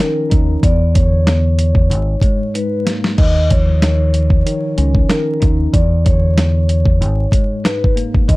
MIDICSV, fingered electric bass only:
0, 0, Header, 1, 2, 480
1, 0, Start_track
1, 0, Tempo, 638298
1, 472, Time_signature, 4, 2, 24, 8
1, 6291, End_track
2, 0, Start_track
2, 0, Title_t, "Fingered electric bass"
2, 0, Program_c, 0, 33
2, 242, Note_on_c, 0, 39, 86
2, 419, Note_off_c, 0, 39, 0
2, 475, Note_on_c, 0, 40, 109
2, 1432, Note_on_c, 0, 32, 104
2, 1444, Note_off_c, 0, 40, 0
2, 1613, Note_off_c, 0, 32, 0
2, 2394, Note_on_c, 0, 39, 104
2, 3323, Note_off_c, 0, 39, 0
2, 3593, Note_on_c, 0, 37, 91
2, 3774, Note_off_c, 0, 37, 0
2, 4080, Note_on_c, 0, 39, 86
2, 4258, Note_off_c, 0, 39, 0
2, 4314, Note_on_c, 0, 40, 110
2, 5272, Note_on_c, 0, 32, 101
2, 5283, Note_off_c, 0, 40, 0
2, 5453, Note_off_c, 0, 32, 0
2, 6233, Note_on_c, 0, 39, 112
2, 6291, Note_off_c, 0, 39, 0
2, 6291, End_track
0, 0, End_of_file